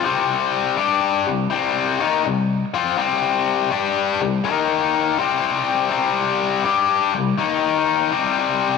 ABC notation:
X:1
M:4/4
L:1/8
Q:"Swing" 1/4=82
K:Cm
V:1 name="Overdriven electric guitar" clef=bass
[C,G,C]2 [G,DG] [C,G,] [C,G,C] [E,B,E] [C,G,] [F,CF] | [C,G,C]2 [G,DG] [C,G,] [E,B,E]2 [C,G,C]2 | [C,G,C]2 [G,DG] [C,G,] [E,B,E]2 [C,G,C]2 |]